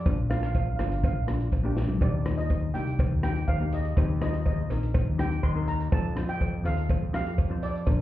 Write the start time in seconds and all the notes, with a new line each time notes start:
Already playing: D5
0.05 A#1 A#3 D4 F4, kick, closed hi-hat, cowbell
0.30 A#3 D4 F4 F5, cross-stick, closed hi-hat, cowbell
0.38 F5
0.43 F5, cross-stick, closed hi-hat
0.53 F5, kick, closed hi-hat, cowbell
0.60 F5
0.69 F5
0.76 G1 A#3 D4 F4 F5, cross-stick, closed hi-hat, cowbell
0.83 F5
0.91 F5, closed hi-hat
0.98 F5
1.04 F5, kick, closed hi-hat, cowbell
1.13 A#1 F5
1.27 A#3 D4 F4, cross-stick, closed hi-hat
1.40 closed hi-hat
1.52 A#1, kick, closed hi-hat, cowbell
1.63 A#3 D4 G4
1.77 snare
1.89 floor tom
2.01 D#2 A#3 D#4 G4 D5, kick, closed hi-hat, cowbell
2.25 A#3 D#4 F4, cross-stick, closed hi-hat, cowbell
2.38 D#5, closed hi-hat
2.50 kick, closed hi-hat, cowbell
2.74 C2 A#3 D#4 G4 G5, closed hi-hat
2.87 closed hi-hat
2.99 kick, closed hi-hat, cowbell
3.11 D#2
3.23 A#3 D#4 G4 G5, cross-stick, closed hi-hat
3.36 closed hi-hat
3.48 D#2 F5, kick, closed hi-hat, cowbell
3.60 A#3 D#4 G4
3.73 D#5, closed hi-hat
3.85 closed hi-hat
3.96 D#2 C4 D#4 G4, kick, closed hi-hat, cowbell
4.21 C4 D#4 F4 D#5, cross-stick, closed hi-hat, cowbell
4.34 closed hi-hat
4.46 D#5, kick, closed hi-hat, cowbell
4.70 A#1 C4 D#4 A#4, closed hi-hat, cowbell
4.83 closed hi-hat
4.94 kick, closed hi-hat, cowbell
5.07 D#2
5.18 C4 D#4 G4 G5, cross-stick, closed hi-hat
5.31 closed hi-hat
5.43 D#2 C6, kick, closed hi-hat, cowbell
5.55 C4 D#4 A#4
5.68 A#5, closed hi-hat
5.80 closed hi-hat
5.91 F2 C4 F4 A4 A5, kick, closed hi-hat, cowbell
6.15 C4 F4 C5, cross-stick, closed hi-hat, cowbell
6.29 G5, closed hi-hat
6.41 kick, closed hi-hat, cowbell
6.64 D#2 C4 F4 A4 F5, closed hi-hat, cowbell
6.77 closed hi-hat
6.90 kick, closed hi-hat, cowbell
7.02 F2
7.13 C4 F4 G4 F5, cross-stick, closed hi-hat
7.27 closed hi-hat
7.38 F2, kick, closed hi-hat, cowbell
7.50 C4 F4 C5
7.63 D5, closed hi-hat
7.75 closed hi-hat
7.86 A#1 D4 F4 A#4, kick, closed hi-hat, cowbell